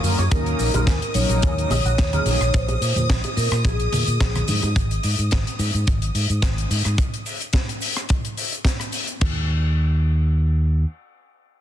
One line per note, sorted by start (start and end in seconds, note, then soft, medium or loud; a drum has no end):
0.00 0.15 F#2 medium
0.00 0.21 F#3 medium
0.00 0.21 A#3 medium
0.00 0.08 C#4 medium
0.00 0.31 D#6 medium
0.00 open hi-hat loud
0.00 tambourine medium
0.00 high conga medium
0.04 0.21 C#4 medium
0.04 0.22 F4 medium
0.04 0.22 A#4 medium
0.04 shaker medium
0.18 0.28 F#2 medium
0.18 0.25 C#5 medium
0.18 closed hi-hat medium
0.18 tambourine medium
0.18 high bongo medium
0.18 shaker medium
0.31 0.53 D#2 loud
0.31 0.71 F#3 medium
0.31 0.71 A#3 medium
0.31 0.71 C#4 medium
0.31 0.39 D#4 medium
0.31 0.71 D#4 medium
0.31 1.11 A#4 medium
0.31 0.71 A#4 loud
0.31 7.00 D#6 medium
0.31 kick loud
0.31 closed hi-hat medium
0.31 tambourine soft
0.31 high bongo medium
0.31 shaker medium
0.46 closed hi-hat medium
0.59 0.71 A#1 medium
0.59 open hi-hat loud
0.59 tambourine loud
0.59 shaker medium
0.74 0.84 A#1 medium
0.74 0.90 F#3 medium
0.74 0.90 A#3 medium
0.74 0.90 C#4 medium
0.74 0.90 D#4 medium
0.74 0.81 A#4 medium
0.74 0.91 C5 medium
0.74 closed hi-hat medium
0.74 tambourine medium
0.74 high bongo medium
0.74 high conga medium
0.74 low conga medium
0.74 shaker medium
0.87 0.98 D#2 medium
0.87 0.94 C#4 loud
0.87 kick medium
0.87 snare loud
0.87 closed hi-hat loud
0.87 tambourine soft
0.87 shaker medium
1.02 closed hi-hat medium
1.14 1.26 A#1 medium
1.14 1.54 F#3 medium
1.14 1.54 A#3 medium
1.14 1.54 C#4 medium
1.14 1.54 D#4 medium
1.14 1.54 A#4 loud
1.14 2.58 C#5 loud
1.14 open hi-hat loud
1.14 tambourine loud
1.14 shaker loud
1.29 1.39 A#1 medium
1.29 closed hi-hat medium
1.29 tambourine medium
1.29 high bongo medium
1.29 shaker medium
1.42 1.64 D#2 medium
1.42 1.50 G#4 medium
1.42 kick loud
1.42 closed hi-hat loud
1.42 tambourine soft
1.42 shaker soft
1.57 1.73 F#3 medium
1.57 1.73 A#3 medium
1.57 1.73 C#4 medium
1.57 1.74 D#4 medium
1.57 1.74 A#4 loud
1.57 closed hi-hat soft
1.70 1.81 A#1 medium
1.70 1.78 D#5 medium
1.70 open hi-hat loud
1.70 tambourine medium
1.70 high bongo medium
1.70 low conga medium
1.70 shaker medium
1.84 1.95 A#1 medium
1.84 1.92 F#4 loud
1.84 closed hi-hat soft
1.84 tambourine soft
1.84 shaker medium
1.98 2.20 D#2 medium
1.98 kick loud
1.98 snare loud
1.98 closed hi-hat medium
1.98 tambourine soft
1.98 shaker soft
2.13 2.39 F#3 medium
2.13 2.39 A#3 medium
2.13 2.40 C#4 medium
2.13 2.40 D#4 medium
2.13 2.40 G#4 medium
2.13 2.20 A#4 medium
2.13 closed hi-hat medium
2.13 low conga loud
2.26 2.37 A#1 medium
2.26 2.34 D#3 medium
2.26 open hi-hat loud
2.26 tambourine medium
2.26 high bongo soft
2.26 high conga medium
2.26 shaker medium
2.40 2.50 A#1 medium
2.40 2.51 D#3 medium
2.40 cross-stick medium
2.40 closed hi-hat medium
2.40 tambourine medium
2.40 shaker medium
2.53 3.05 C5 medium
2.53 kick loud
2.53 closed hi-hat medium
2.53 tambourine soft
2.53 shaker medium
2.68 closed hi-hat medium
2.68 high bongo medium
2.81 2.93 A#2 loud
2.81 open hi-hat loud
2.81 tambourine medium
2.81 shaker loud
2.96 3.06 A#2 medium
2.96 closed hi-hat medium
2.96 tambourine medium
2.96 high conga medium
2.96 low conga medium
2.96 shaker medium
3.10 3.21 A#1 medium
3.10 kick medium
3.10 snare loud
3.10 closed hi-hat medium
3.10 tambourine soft
3.10 shaker medium
3.24 closed hi-hat medium
3.24 high bongo soft
3.37 3.48 A#2 loud
3.37 3.49 A#4 loud
3.37 open hi-hat loud
3.37 tambourine loud
3.37 shaker medium
3.52 3.62 A#2 loud
3.52 cross-stick medium
3.52 closed hi-hat medium
3.52 tambourine medium
3.52 shaker medium
3.64 3.86 A#1 medium
3.64 4.44 G#4 loud
3.64 kick loud
3.64 closed hi-hat medium
3.64 tambourine soft
3.64 high bongo medium
3.64 shaker medium
3.80 closed hi-hat medium
3.92 4.04 A#2 medium
3.92 open hi-hat loud
3.92 tambourine medium
3.92 low conga medium
3.92 shaker medium
4.07 4.17 A#2 medium
4.07 closed hi-hat medium
4.07 tambourine medium
4.07 shaker medium
4.20 4.42 A#1 medium
4.20 kick loud
4.20 snare loud
4.20 closed hi-hat loud
4.20 tambourine soft
4.20 high bongo medium
4.20 shaker soft
4.35 cross-stick medium
4.35 closed hi-hat medium
4.35 low conga medium
4.48 4.59 G#2 medium
4.48 open hi-hat loud
4.48 tambourine medium
4.48 high conga medium
4.48 shaker loud
4.62 4.73 G#2 medium
4.62 closed hi-hat medium
4.62 tambourine medium
4.62 high bongo medium
4.62 shaker medium
4.76 4.97 G#1 loud
4.76 kick loud
4.76 closed hi-hat medium
4.76 shaker soft
4.91 closed hi-hat medium
5.03 5.15 G#2 loud
5.03 open hi-hat loud
5.03 shaker loud
5.18 5.28 G#2 medium
5.18 closed hi-hat medium
5.18 shaker medium
5.31 5.43 G#1 medium
5.31 kick loud
5.31 snare loud
5.31 closed hi-hat loud
5.31 shaker medium
5.47 closed hi-hat medium
5.59 5.70 G#2 loud
5.59 open hi-hat loud
5.59 shaker medium
5.74 5.84 G#2 loud
5.74 closed hi-hat medium
5.74 shaker medium
5.87 6.09 G#1 medium
5.87 kick loud
5.87 closed hi-hat medium
5.87 shaker soft
6.02 closed hi-hat medium
6.15 6.26 G#2 medium
6.15 open hi-hat loud
6.15 shaker medium
6.30 6.40 G#2 medium
6.30 closed hi-hat medium
6.30 shaker medium
6.42 6.64 G#1 medium
6.42 kick loud
6.42 snare loud
6.42 closed hi-hat loud
6.42 shaker medium
6.58 closed hi-hat medium
6.71 6.82 G#2 loud
6.71 open hi-hat loud
6.71 shaker loud
6.85 6.95 G#2 medium
6.85 cross-stick medium
6.85 closed hi-hat medium
6.85 shaker medium
6.98 kick loud
6.98 closed hi-hat loud
6.98 shaker medium
7.14 closed hi-hat medium
7.26 open hi-hat loud
7.26 shaker medium
7.41 closed hi-hat medium
7.41 shaker medium
7.53 kick loud
7.53 snare loud
7.53 closed hi-hat loud
7.53 shaker medium
7.69 closed hi-hat medium
7.81 open hi-hat loud
7.81 shaker medium
7.97 cross-stick medium
7.97 closed hi-hat medium
7.97 shaker medium
8.09 kick loud
8.09 closed hi-hat loud
8.09 shaker medium
8.25 closed hi-hat medium
8.37 open hi-hat loud
8.37 shaker medium
8.52 closed hi-hat medium
8.52 shaker medium
8.65 kick medium
8.65 snare loud
8.65 closed hi-hat loud
8.65 shaker medium
8.80 cross-stick medium
8.80 closed hi-hat medium
8.92 open hi-hat loud
8.92 shaker medium
9.08 closed hi-hat medium
9.08 shaker medium
9.21 10.84 D#2 loud
9.21 kick loud
9.21 crash medium